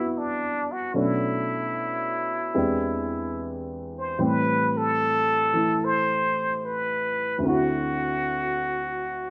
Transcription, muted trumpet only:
0, 0, Header, 1, 2, 480
1, 0, Start_track
1, 0, Tempo, 808625
1, 557, Time_signature, 4, 2, 24, 8
1, 5520, End_track
2, 0, Start_track
2, 0, Title_t, "Muted trumpet"
2, 0, Program_c, 0, 59
2, 0, Note_on_c, 0, 64, 73
2, 106, Note_on_c, 0, 62, 75
2, 115, Note_off_c, 0, 64, 0
2, 427, Note_on_c, 0, 66, 65
2, 436, Note_off_c, 0, 62, 0
2, 577, Note_on_c, 0, 64, 75
2, 586, Note_off_c, 0, 66, 0
2, 2117, Note_off_c, 0, 64, 0
2, 2363, Note_on_c, 0, 72, 70
2, 2516, Note_on_c, 0, 71, 86
2, 2525, Note_off_c, 0, 72, 0
2, 2834, Note_on_c, 0, 69, 91
2, 2843, Note_off_c, 0, 71, 0
2, 3470, Note_on_c, 0, 72, 77
2, 3478, Note_off_c, 0, 69, 0
2, 3945, Note_on_c, 0, 71, 77
2, 3954, Note_off_c, 0, 72, 0
2, 4433, Note_on_c, 0, 66, 81
2, 4442, Note_off_c, 0, 71, 0
2, 5520, Note_off_c, 0, 66, 0
2, 5520, End_track
0, 0, End_of_file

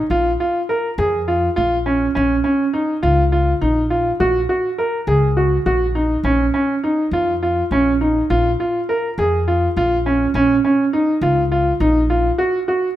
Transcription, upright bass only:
0, 0, Header, 1, 2, 480
1, 0, Start_track
1, 0, Key_signature, -5, "minor"
1, 0, Tempo, 584795
1, 91, Time_signature, 7, 3, 24, 8
1, 10638, End_track
2, 0, Start_track
2, 0, Title_t, "Upright bass"
2, 0, Program_c, 0, 32
2, 81, Note_on_c, 0, 34, 69
2, 287, Note_off_c, 0, 34, 0
2, 804, Note_on_c, 0, 41, 80
2, 1209, Note_off_c, 0, 41, 0
2, 1292, Note_on_c, 0, 34, 67
2, 1694, Note_off_c, 0, 34, 0
2, 1777, Note_on_c, 0, 34, 73
2, 1976, Note_off_c, 0, 34, 0
2, 2488, Note_on_c, 0, 37, 78
2, 2891, Note_off_c, 0, 37, 0
2, 2968, Note_on_c, 0, 34, 67
2, 3371, Note_off_c, 0, 34, 0
2, 3448, Note_on_c, 0, 34, 72
2, 3650, Note_off_c, 0, 34, 0
2, 4162, Note_on_c, 0, 37, 76
2, 4568, Note_off_c, 0, 37, 0
2, 4645, Note_on_c, 0, 34, 69
2, 5049, Note_off_c, 0, 34, 0
2, 5117, Note_on_c, 0, 34, 71
2, 5324, Note_off_c, 0, 34, 0
2, 5840, Note_on_c, 0, 41, 74
2, 6246, Note_off_c, 0, 41, 0
2, 6326, Note_on_c, 0, 34, 68
2, 6730, Note_off_c, 0, 34, 0
2, 6812, Note_on_c, 0, 34, 72
2, 7013, Note_off_c, 0, 34, 0
2, 7533, Note_on_c, 0, 41, 74
2, 7934, Note_off_c, 0, 41, 0
2, 8015, Note_on_c, 0, 34, 72
2, 8416, Note_off_c, 0, 34, 0
2, 8488, Note_on_c, 0, 34, 79
2, 8690, Note_off_c, 0, 34, 0
2, 9205, Note_on_c, 0, 37, 81
2, 9610, Note_off_c, 0, 37, 0
2, 9687, Note_on_c, 0, 34, 74
2, 10091, Note_off_c, 0, 34, 0
2, 10638, End_track
0, 0, End_of_file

